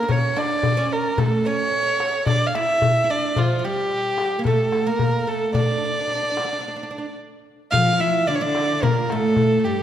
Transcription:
0.00 0.08 D4 medium
0.00 0.12 A#4 medium
0.09 0.36 C#4 medium
0.09 0.39 C#5 medium
0.09 darbuka dum medium
0.36 0.77 D4 medium
0.36 0.94 D5 medium
0.36 darbuka tek medium
0.63 darbuka dum medium
0.77 1.20 C#4 medium
0.77 darbuka ka soft
0.92 1.20 A#4 medium
1.18 1.46 A3 medium
1.18 1.47 A4 medium
1.18 darbuka dum loud
1.45 2.26 C#4 medium
1.45 2.27 C#5 loud
1.45 darbuka ka soft
2.00 darbuka tek medium
2.27 2.55 D4 medium
2.27 2.48 D5 medium
2.27 darbuka dum medium
2.46 2.56 F5 medium
2.55 3.03 E4 medium
2.55 3.12 E5 medium
2.55 darbuka tek medium
2.82 darbuka dum medium
2.96 darbuka ka soft
3.04 3.09 E4 medium
3.10 3.38 D4 medium
3.10 3.39 D5 medium
3.36 3.58 F3 medium
3.36 3.66 F4 medium
3.36 darbuka dum medium
3.59 3.65 F3 medium
3.63 4.38 G3 medium
3.63 4.45 G4 medium
3.63 darbuka ka soft
4.18 darbuka tek medium
4.39 4.46 A#3 medium
4.45 4.86 A3 medium
4.45 4.88 A4 medium
4.45 darbuka dum medium
4.72 darbuka tek medium
4.87 5.27 A#3 medium
4.87 5.30 A#4 medium
4.99 darbuka dum medium
5.13 darbuka ka soft
5.27 5.56 A3 medium
5.27 5.55 A4 medium
5.54 5.61 D4 medium
5.54 7.15 D5 medium
5.54 darbuka dum medium
5.62 5.70 D4 soft
5.71 5.76 D4 medium
5.77 5.84 D4 soft
5.82 5.92 D4 medium
5.82 darbuka ka soft
5.93 5.99 D4 soft
5.93 darbuka ka soft
6.01 6.06 D4 soft
6.08 6.14 D4 soft
6.08 darbuka ka soft
6.15 6.22 D4 soft
6.23 6.30 D4 soft
6.31 6.38 D4 soft
6.37 6.43 D4 soft
6.37 darbuka tek medium
6.45 6.51 D4 soft
6.50 6.59 D4 soft
6.50 darbuka ka soft
6.60 6.67 D4 soft
6.68 6.75 D4 soft
6.76 6.82 D4 soft
6.83 6.89 D4 soft
6.91 6.97 D4 medium
6.98 7.05 D4 soft
7.72 8.24 F3 medium
7.72 7.91 F4 medium
7.72 8.01 F5 loud
7.72 darbuka dum medium
7.92 7.99 F4 medium
8.00 8.27 E4 medium
8.00 8.29 E5 medium
8.00 darbuka ka soft
8.15 darbuka ka soft
8.27 8.42 D3 medium
8.27 8.40 D4 medium
8.27 8.36 D5 medium
8.27 darbuka ka soft
8.35 8.43 C#5 medium
8.41 8.80 D3 medium
8.41 8.83 D4 medium
8.41 8.84 D5 medium
8.55 darbuka tek medium
8.69 darbuka ka soft
8.83 9.10 A#2 medium
8.83 9.08 A#3 medium
8.83 9.12 A#4 medium
8.83 darbuka dum medium
8.96 darbuka ka soft
9.09 9.64 A2 medium
9.09 9.58 A3 medium
9.09 9.65 A4 medium
9.09 darbuka tek medium
9.36 darbuka dum medium
9.60 9.65 A3 medium
9.64 9.83 G2 medium
9.64 9.83 G3 medium
9.64 9.83 G4 medium
9.64 darbuka ka soft
9.78 darbuka ka soft

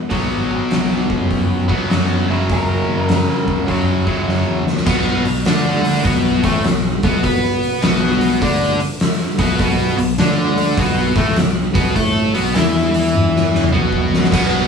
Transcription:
0.00 0.12 B3 medium
0.10 0.28 B1 medium
0.10 1.66 B2 medium
0.10 1.69 F#3 medium
0.10 1.67 B3 medium
0.10 kick medium
0.10 open hi-hat soft
0.30 0.47 G#1 medium
0.50 0.59 G#1 medium
0.71 1.06 B1 medium
0.71 snare loud
0.71 open hi-hat soft
1.10 kick medium
1.20 1.71 F#2 medium
1.31 kick medium
1.31 open hi-hat soft
1.68 1.79 B1 medium
1.68 1.87 B2 medium
1.68 1.90 F#3 medium
1.68 1.88 B3 medium
1.68 kick medium
1.88 2.25 F#2 medium
1.88 2.25 B2 medium
1.88 2.31 F#3 medium
1.88 2.27 B3 medium
1.88 snare loud
1.88 open hi-hat soft
2.28 2.82 F#1 medium
2.28 3.65 F#2 medium
2.28 3.67 C#3 medium
2.28 3.68 F#3 medium
2.49 3.66 A#4 medium
2.49 kick loud
2.49 open hi-hat soft
2.88 2.97 D#2 medium
2.98 3.25 F#1 medium
3.09 snare loud
3.09 open hi-hat soft
3.48 kick medium
3.66 4.04 F#2 medium
3.66 4.03 F#2 medium
3.66 4.05 C#3 medium
3.66 4.05 F#3 medium
3.66 kick medium
3.66 open hi-hat soft
4.06 4.65 F#2 medium
4.06 4.64 C#3 medium
4.06 4.64 F#3 medium
4.06 kick medium
4.28 4.45 F#2 medium
4.28 snare medium
4.47 4.65 E2 medium
4.67 4.75 D#2 medium
4.67 snare medium
4.76 4.85 C#2 medium
4.76 snare medium
4.86 5.23 B1 medium
4.86 5.24 B2 medium
4.86 5.24 B3 medium
4.86 kick loud
4.86 crash loud
5.25 5.45 B1 medium
5.25 5.42 B2 medium
5.25 open hi-hat medium
5.45 6.01 D2 medium
5.45 6.04 D3 medium
5.45 6.04 D4 loud
5.45 snare loud
5.45 open hi-hat medium
5.85 open hi-hat medium
6.04 6.41 B1 loud
6.04 6.42 B2 medium
6.04 6.42 B3 loud
6.04 kick loud
6.04 open hi-hat medium
6.25 snare soft
6.43 6.63 A1 loud
6.43 6.63 A2 medium
6.43 6.64 A3 loud
6.43 kick loud
6.43 open hi-hat medium
6.64 7.00 B1 medium
6.64 6.95 B2 medium
6.64 snare loud
6.64 open hi-hat medium
7.03 7.22 B1 medium
7.03 7.23 B2 medium
7.03 7.22 B3 loud
7.03 kick loud
7.03 open hi-hat medium
7.24 7.79 B2 loud
7.24 7.82 B3 medium
7.24 7.83 B4 loud
7.24 kick loud
7.24 open hi-hat medium
7.63 open hi-hat medium
7.82 8.37 B1 medium
7.82 8.41 B2 loud
7.82 8.41 B3 loud
7.82 snare loud
7.82 open hi-hat medium
8.21 open hi-hat medium
8.42 8.77 D2 loud
8.42 8.79 D3 loud
8.42 8.79 D4 loud
8.42 kick medium
8.42 open hi-hat medium
8.80 open hi-hat medium
9.00 snare loud
9.00 open hi-hat medium
9.38 9.58 B1 medium
9.38 9.58 B2 loud
9.38 9.59 B3 loud
9.38 kick loud
9.38 open hi-hat medium
9.59 9.95 B1 loud
9.59 9.97 B2 loud
9.59 9.97 B3 medium
9.59 kick loud
9.59 open hi-hat medium
9.97 10.16 B1 medium
9.97 10.14 B2 medium
9.97 open hi-hat medium
10.18 10.73 D2 medium
10.18 10.77 D3 loud
10.18 10.77 D4 loud
10.18 snare loud
10.18 open hi-hat medium
10.58 open hi-hat medium
10.77 11.13 B1 loud
10.77 11.15 B2 medium
10.77 11.16 B3 loud
10.77 kick medium
10.77 open hi-hat medium
10.97 snare soft
11.15 11.35 A1 loud
11.15 11.36 A2 medium
11.15 11.37 A3 loud
11.15 kick loud
11.15 open hi-hat medium
11.36 11.73 B1 medium
11.36 11.68 B2 medium
11.36 snare loud
11.36 open hi-hat medium
11.75 11.94 B1 medium
11.75 11.95 B2 loud
11.75 11.95 B3 loud
11.75 kick loud
11.75 open hi-hat medium
11.95 12.31 A2 medium
11.95 12.33 A3 medium
11.95 12.33 A4 medium
11.95 kick medium
11.95 open hi-hat medium
12.34 12.54 B1 medium
12.34 12.54 B2 medium
12.34 12.54 B3 loud
12.34 open hi-hat medium
12.55 13.69 E2 medium
12.55 13.72 E3 medium
12.55 13.72 E4 loud
12.55 snare loud
12.55 open hi-hat medium
12.94 open hi-hat medium
13.15 high tom medium
13.36 snare medium
13.55 snare medium
13.64 mid tom medium
13.72 14.27 B1 medium
13.72 14.30 B2 medium
13.72 14.31 B3 loud
13.72 mid tom medium
13.92 kick medium
14.14 snare loud
14.24 snare medium
14.31 14.67 B1 medium
14.31 14.68 B2 medium
14.31 14.68 B3 loud
14.31 kick loud
14.31 crash loud
14.31 crash medium

